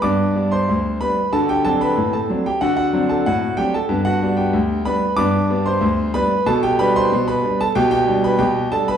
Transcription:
<<
  \new Staff \with { instrumentName = "Grand piano" } { \time 2/4 \key g \major \tempo 4 = 93 <d'' d'''>8. <c'' c'''>8. <b' b''>8 | <a' a''>16 <g' g''>16 <a' a''>16 <b' b''>8 <a' a''>8 <g' g''>16 | <fis' fis''>16 <fis' fis''>8 <a' a''>16 <fis' fis''>8 <g' g''>16 <a' a''>16 | r16 <fis' fis''>8 <g' g''>8. <b' b''>8 |
<d'' d'''>8. <c'' c'''>8. <b' b''>8 | <a' a''>16 <g' g''>16 <b' b''>16 <c'' c'''>8 <b' b''>8 <a' a''>16 | <g' g''>16 <g' g''>8 <b' b''>16 <g' g''>8 <a' a''>16 <b' b''>16 | }
  \new Staff \with { instrumentName = "Grand piano" } { \time 2/4 \key g \major <g, b>8 <g b d'>8 d,8 <g b d'>8 | <d fis'>8 <fis c' d'>8 a,8 <fis c' d'>8 | d8 <fis c' d'>8 a,8 <fis c' d'>8 | <g, b>8 <g b d'>8 d,8 <g b d'>8 |
<g, b>8 <g b d'>8 d,8 <g b d'>8 | b,8 <g d'>8 b,8 <g d'>8 | b,8 <g d'>8 b,8 <g d'>8 | }
>>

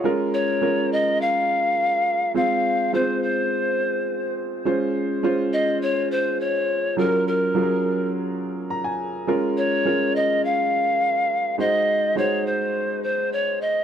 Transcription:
<<
  \new Staff \with { instrumentName = "Pan flute" } { \time 4/4 \key bes \minor \tempo 4 = 104 r8 des''4 ees''8 f''2 | f''4 c''8 c''2 r8 | r4. ees''8 des''8 c''8 des''4 | bes'8 bes'4. r2 |
r8 des''4 ees''8 f''2 | ees''4 des''8 c''4 c''8 des''8 ees''8 | }
  \new Staff \with { instrumentName = "Grand piano" } { \time 4/4 \key bes \minor << { des''16 r2. r8. | r1 | r1 | r2. bes''16 aes''8. |
r1 | r1 | } \\ { <aes des' f' bes'>8 r8 <aes des' f' bes'>4. r4. | <aes c' f' c''>8 r8 <aes c' f' c''>4. r4. | <aes des' f' c''>8 r8 <aes des' f' c''>4. r4. | <ges des' f' aes' bes'>8 r8 <ges des' f' aes' bes'>4. r4. |
<aes des' f' bes'>8 r8 <aes des' f' bes'>4. r4. | <aes ees' ges' c''>8 r8 <aes ees' ges' c''>4. r4. | } >> }
>>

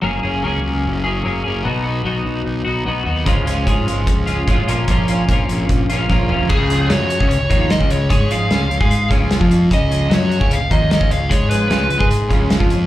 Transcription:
<<
  \new Staff \with { instrumentName = "Lead electric guitar" } { \time 4/4 \key des \mixolydian \tempo 4 = 149 r1 | r1 | r1 | r1 |
aes'4 des''4 des''4 ees''8 des''8 | des''8 f''2 r4. | ees''4 des''4 f''8 ees''8 ees''8 f''8 | des''8 ces''4. r2 | }
  \new Staff \with { instrumentName = "Overdriven electric guitar" } { \time 4/4 \key des \mixolydian r1 | r1 | <des f aes des' f'>8 <aes des' f'>8 <f aes des' f'>4. <aes des' f'>8 <des f aes des' f'>8 <bes, f bes des' f'>8 | <bes, f bes des' f'>8 <bes des' f'>8 <f bes des' f'>4. <bes des' f'>8 <bes, f bes des' f'>8 <bes des' f'>8 |
r8 <f aes des' f'>8 <f aes des' f'>8 r4 <f aes des' f'>8 <f aes des' f'>8 r8 | r8 <f aes des' f'>8 <f aes des' f'>8 r4 <f aes des' f'>8 <f aes des' f'>8 r8 | r8 <f aes des' f'>8 <f aes des' f'>8 r4 <f aes des' f'>8 <f aes des' f'>8 r8 | r8 <f aes des' f'>8 <f aes des' f'>8 r4 <f aes des' f'>8 <f aes des' f'>8 r8 | }
  \new Staff \with { instrumentName = "Clean electric guitar" } { \time 4/4 \key des \mixolydian <ges bes des' aes'>8 <bes des' aes'>8 <ges bes des' aes'>4. <bes des' aes'>8 <ges bes des' aes'>8 <bes des' aes'>8 | <ces ges ces' ees' ges'>8 <ces' ees' ges'>8 <ces ges ces' ees' ges'>4. <ces' ees' ges'>8 <ges ces' ees' ges'>8 <ces' ees' ges'>8 | <des f aes des' f'>8 <aes des' f'>8 <des f aes des' f'>4. <aes des' f'>8 <f aes des' f'>8 <bes, f bes des' f'>8 | <bes, f bes des' f'>8 <bes des' f'>8 <bes, f bes des' f'>4. <bes des' f'>8 <f bes des' f'>8 <bes des' f'>8 |
des4 ges8. des8 des16 ees8. des8. | aes4 des8 des16 aes8. des8. f8. | des4 ges8. des8 des16 ees8. des8. | aes4 des8 des16 aes8. des8. f8. | }
  \new Staff \with { instrumentName = "Fingered electric bass" } { \clef bass \time 4/4 \key des \mixolydian ges,,8 ges,,8 des,8 des,8 ges,,4 ges,,8 ges,,8 | ces,4 ces,8 ces,8 ces,8 ces,8 ces,8 ees,8 | des,8 des,8 aes,8 aes,,8 des,4 a,,8 bes,,8 | bes,,4 bes,,8 bes,,8 bes,,8 bes,,8 bes,,8 f,,8 |
des,4 ges,8. des,8 des,16 ees,8. des,8. | aes,4 des,8 des,16 aes,8. des,8. f,8. | des,4 ges,8. des,8 des,16 ees,8. des,8. | aes,4 des,8 des,16 aes,8. des,8. f,8. | }
  \new DrumStaff \with { instrumentName = "Drums" } \drummode { \time 4/4 r4 r4 r4 r4 | r4 r4 r4 r4 | <hh bd>8 hh8 <hh bd>8 hh8 <hh bd>8 hh8 <hh bd>8 hh8 | <hh bd>8 hh8 <hh bd>8 hh8 <hh bd>8 hh8 <bd sn>8 tomfh8 |
<cymc bd>8 hh8 <hh sn>8 hh16 bd16 hh8 <hh bd>8 <hh sn>16 bd16 hh8 | <hh bd>8 hh8 <hh sn>8 hh16 bd16 hh8 <hh bd>8 <hh sn>16 bd16 hh8 | <hh bd>8 hh8 <hh sn>8 hh16 bd16 hh8 <hh bd>8 <hh sn>16 bd16 hh8 | <hh bd>8 hh8 <hh sn>8 hh16 bd16 hh8 <hh bd>8 <hh sn>16 bd16 hh8 | }
>>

